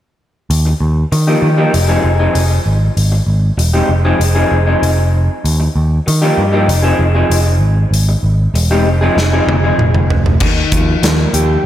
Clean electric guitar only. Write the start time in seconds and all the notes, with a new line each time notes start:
0.66 muted clean electric guitar stroke
1.12 muted clean electric guitar stroke
1.27 F3 A#3 D#4 G4
1.57 F3 A#3 D#4 G4
1.73 muted clean electric guitar stroke
1.88 F3 C4 D#4 G#4
2.19 F3 C4 D#4 G#4
2.50 muted clean electric guitar stroke
3.12 muted clean electric guitar stroke
3.58 muted clean electric guitar stroke
3.73 G#3 C4 D#4 G4
4.05 F3 C4 D#4 G#4
4.20 muted clean electric guitar stroke
4.35 F3 C4 D#4 G#4
4.66 F3 C4 D#4 G#4
4.98 muted clean electric guitar stroke
5.60 muted clean electric guitar stroke
6.06 muted clean electric guitar stroke
6.22 F3 A#3 D#4 G4
6.52 F3 A#3 D#4 G4
6.68 muted clean electric guitar stroke
6.82 F3 C4 D#4 G#4
7.15 F3 C4 D#4 G#4
7.47 muted clean electric guitar stroke
8.09 muted clean electric guitar stroke
8.55 muted clean electric guitar stroke
8.71 G#3 C4 D#4 G4
9.01 F3 C4 D#4 G#4
9.17 muted clean electric guitar stroke
9.33 F3 C4 D#4 G#4
9.64 F3 C4 D#4 G#4
9.95 muted clean electric guitar stroke
10.42 D#3
10.72 F3
11.03 A#3
11.34 G4